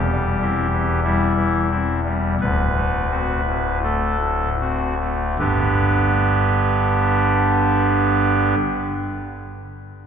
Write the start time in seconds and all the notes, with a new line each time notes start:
Already playing: E1 E2 G4
0.12 G3
0.41 C4 E4
0.73 E3
1.04 G3 E4
1.37 E3
1.71 C4 E4
2.05 G3
2.41 D1 D2 B4
2.76 A3
3.11 C4 F#4
3.47 A2
3.83 A3 A4
4.21 A2
4.60 C4 F#4
5.00 A3
5.39 G1 G2 D3 B3 D4 G4 B4